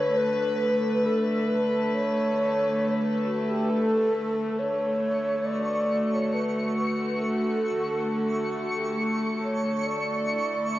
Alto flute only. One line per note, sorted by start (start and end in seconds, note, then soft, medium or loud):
0.00 0.18 C#5 loud
0.17 1.07 B4 loud
1.05 1.50 A4 medium
1.48 1.96 B4 medium
1.94 2.95 C#5 loud
3.24 3.45 F#4 medium
3.47 3.71 G4 loud
3.70 4.60 A4 loud
4.59 5.47 C#5 loud
5.45 6.11 D5 loud
6.13 6.35 C#5 medium
6.34 6.78 B4 medium
6.79 7.24 B4 medium
7.23 8.28 A4 medium
8.56 8.79 F#4 medium
8.78 9.02 G4 medium
9.00 9.42 A4 medium
9.43 9.88 C#5 medium
9.87 10.79 D5 loud